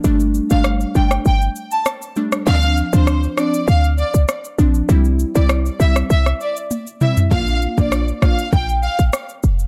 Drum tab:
SH |xxxxxxxxxxxxxxxx|xxxxxxxxxxxxxxxx|xxxxxxxxxxxxxxxx|xxxxxxxxxxxxxxxx|
SD |----r--r----r--r|----r-r-----r---|----r--r-r------|----r-r-----r---|
T1 |----------------|----------------|------------o---|----------------|
T2 |----------------|----------------|--------------o-|----------------|
FT |----------------|----------------|---------------o|----------------|
BD |----------------|----------------|----------------|o--o--o-o-------|